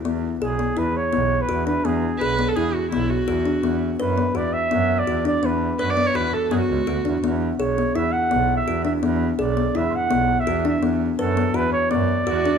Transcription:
<<
  \new Staff \with { instrumentName = "Flugelhorn" } { \time 5/4 \key e \mixolydian \tempo 4 = 167 r4 gis'4 b'8 cis''4~ cis''16 b'8. b'8 | gis'4 r1 | r4 b'4 d''8 e''4~ e''16 d''8. d''8 | b'4 r1 |
r4 cis''4 e''8 fis''4~ fis''16 e''8. e''8 | r4 d''4 e''8 fis''4~ fis''16 e''8. e''8 | r4 a'4 b'8 cis''8 d''2 | }
  \new Staff \with { instrumentName = "Viola" } { \time 5/4 \key e \mixolydian r1 r4 | r4 b'8. a'16 gis'8 fis'8 e'8 fis'4.~ | fis'8 r1 r8 | r4 b'16 d''8 cis''16 b'8 a'8 gis'16 fis'4.~ fis'16~ |
fis'16 r1 r8. | r1 r4 | r1 fis'4 | }
  \new Staff \with { instrumentName = "Kalimba" } { \time 5/4 \key e \mixolydian b4 gis'8 b8 e'4 b4 fis'8 d'8 | b4 gis'8 b8 e'4 b4 fis'8 d'8 | b4 b'8 b8 fis'4 b4 fis'8 d'8 | b4 b'8 b8 fis'4 b4 fis'8 d'8 |
b4 gis'8 b8 e'4 b4 fis'8 d'8 | b4 gis'8 b8 e'4 b4 fis'8 d'8 | b4 b'8 b8 fis'4 b4 fis'8 d'8 | }
  \new Staff \with { instrumentName = "Double bass" } { \clef bass \time 5/4 \key e \mixolydian e,4 b,,4 e,8 r8 b,,4 e,4 | e,4 b,,4 e,8 r8 b,,4 e,4 | e,4 fis,4 e,8 r8 fis,4 e,4 | e,4 fis,4 e,8 r8 fis,8 cis,8 d,8 e,8 |
e,4 b,,4 e,8 r8 b,,4 e,4 | e,4 b,,4 e,8 r8 b,,4 e,4 | e,4 fis,4 e,8 r8 fis,4 e,4 | }
>>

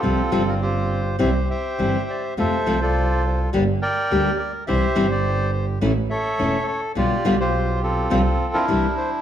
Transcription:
<<
  \new Staff \with { instrumentName = "Bandoneon" } { \time 4/4 \key c \mixolydian \tempo 4 = 104 << { a'8. bes'16 c''4 e''8 g''4 d''8 | e''8. d''8. c''8 r8 g''4 d''8 | e''8. d''8. c''8 r8 e''4 cis''8 | d''8. c''8. a'4~ a'16 bes'8. c''8 | } \\ { <c' f'>4 <f' g'>4 <g' c''>8 <c'' e''>4. | <a' c''>8. <f' a'>4~ <f' a'>16 r8 <bes' d''>4. | <g' c''>8. g'4~ g'16 r8 <a' cis''>4. | <f' g'>8. <f' g'>8. <c' f'>4~ <c' f'>16 <d' e'>4~ <d' e'>16 | } >> }
  \new Staff \with { instrumentName = "Nylon-string guitar" } { \clef bass \time 4/4 \key c \mixolydian <c f g c' f'>8 <c f g c' f'>8 r4 <c e g c' e'>8 r8 <c e g c' e'>8 r8 | <c f a c' f'>8 <c f a c' f'>8 r4 <d g bes d' g'>8 r8 <d g bes d' g'>8 r8 | <c e g c' e'>8 <c e g c' e'>8 r4 <e a cis' e'>8 r8 <e a cis' e'>8 r8 | <b, d g b f'>8 <b, d g b f'>8 r4 <c f g c' f'>8 r8 <c e g d' e'>8 r8 | }
  \new Staff \with { instrumentName = "Double bass" } { \clef bass \time 4/4 \key c \mixolydian c,8 g,,4. c,8 r8 g,,8 r8 | f,8 c,4. g,,8 r8 d,8 r8 | c,8 g,,4. a,,8 r8 e,,8 r8 | b,,8 b,,4. c,8 r8 c,8 r8 | }
>>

